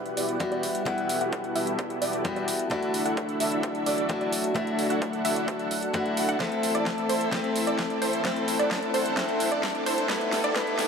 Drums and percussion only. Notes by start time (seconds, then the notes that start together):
0.06 closed hi-hat
0.17 open hi-hat
0.29 closed hi-hat
0.40 kick, closed hi-hat
0.52 closed hi-hat
0.63 open hi-hat
0.75 closed hi-hat
0.86 kick, closed hi-hat
0.98 closed hi-hat
1.09 open hi-hat
1.21 closed hi-hat
1.32 kick, closed hi-hat
1.44 closed hi-hat
1.56 open hi-hat
1.67 closed hi-hat
1.79 kick, closed hi-hat
1.90 closed hi-hat
2.02 open hi-hat
2.13 closed hi-hat
2.25 kick, closed hi-hat
2.36 closed hi-hat
2.48 open hi-hat
2.59 closed hi-hat
2.71 kick, closed hi-hat
2.83 closed hi-hat
2.94 open hi-hat
3.06 closed hi-hat
3.17 kick, closed hi-hat
3.29 closed hi-hat
3.40 open hi-hat
3.52 closed hi-hat
3.63 kick, closed hi-hat
3.75 closed hi-hat
3.86 open hi-hat
3.98 closed hi-hat
4.09 kick, closed hi-hat
4.21 closed hi-hat
4.32 open hi-hat
4.44 closed hi-hat
4.56 kick, closed hi-hat
4.67 closed hi-hat
4.79 open hi-hat
4.90 closed hi-hat
5.02 kick, closed hi-hat
5.13 closed hi-hat
5.25 open hi-hat
5.36 closed hi-hat
5.48 kick, closed hi-hat
5.59 closed hi-hat
5.71 open hi-hat
5.83 closed hi-hat
5.94 kick, closed hi-hat
6.06 closed hi-hat
6.17 open hi-hat
6.29 closed hi-hat
6.40 kick, snare, closed hi-hat
6.52 closed hi-hat
6.63 open hi-hat
6.75 closed hi-hat
6.86 kick, snare, closed hi-hat
6.98 closed hi-hat
7.09 open hi-hat
7.21 closed hi-hat
7.33 kick, snare, closed hi-hat
7.44 closed hi-hat
7.56 open hi-hat
7.67 closed hi-hat
7.79 kick, snare, closed hi-hat
7.90 closed hi-hat
8.02 open hi-hat
8.13 closed hi-hat
8.25 kick, snare, closed hi-hat
8.36 closed hi-hat
8.48 open hi-hat
8.59 closed hi-hat
8.71 kick, snare, closed hi-hat
8.83 closed hi-hat
8.94 open hi-hat
9.06 closed hi-hat
9.17 kick, snare, closed hi-hat
9.29 closed hi-hat
9.40 open hi-hat
9.52 closed hi-hat
9.63 kick, snare, closed hi-hat
9.75 closed hi-hat
9.86 open hi-hat
9.98 closed hi-hat
10.09 kick, snare, closed hi-hat
10.21 closed hi-hat
10.33 snare, open hi-hat
10.44 closed hi-hat
10.56 kick, snare, closed hi-hat
10.67 closed hi-hat
10.79 snare, open hi-hat